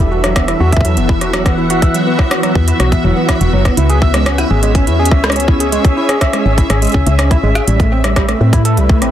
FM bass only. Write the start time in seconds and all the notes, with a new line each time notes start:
Already playing: E1
0.60 E2
0.97 F#1
1.21 E1
2.55 E2
2.80 B1
3.04 E1
3.41 E1
3.53 F#1
3.77 C#2
4.50 G#1
4.87 E2
5.11 C#2
6.46 G#1
6.70 G#1
6.94 C#2
7.07 C#2
7.43 G#1
7.67 A1
8.41 A2
8.77 C2
9.02 A1